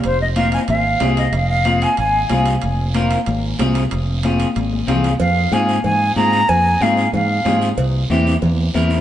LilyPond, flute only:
\new Staff \with { instrumentName = "Flute" } { \time 4/4 \key f \minor \tempo 4 = 186 c''8 ees''8 f''8 aes''8 f''4. ees''8 | f''8 f''4 aes''8 aes''4. r8 | r1 | r1 |
f''4 aes''4 aes''4 bes''4 | aes''4 f''4 f''4. r8 | r1 | }